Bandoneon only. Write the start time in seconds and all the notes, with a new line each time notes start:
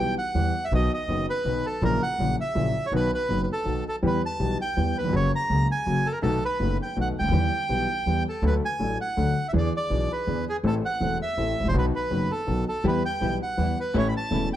Already playing: G5
0.18 F#5
0.65 E5
0.75 D#5
0.94 D#5
1.30 B4
1.66 A4
1.85 A#4
2.03 F#5
2.41 E5
2.86 C#5
2.96 B4
3.14 B4
3.43 B4
3.52 A4
3.89 A4
4.07 B4
4.26 A5
4.61 G5
4.98 B4
5.16 C#5
5.35 A#5
5.72 G#5
6.06 A4
6.12 A#4
6.23 A4
6.45 B4
6.82 G5
7.01 F#5
7.19 G5
8.29 A4
8.47 B4
8.65 G#5
9.01 F#5
9.49 E5
9.58 D5
9.77 D5
10.12 B4
10.49 G#4
10.67 A4
10.86 F#5
11.22 E5
11.68 C5
11.78 B4
11.96 B4
12.32 A4
12.69 A4
12.88 B4
13.05 G5
13.43 F#5
13.80 B4
13.98 C#5
14.09 B5
14.17 A5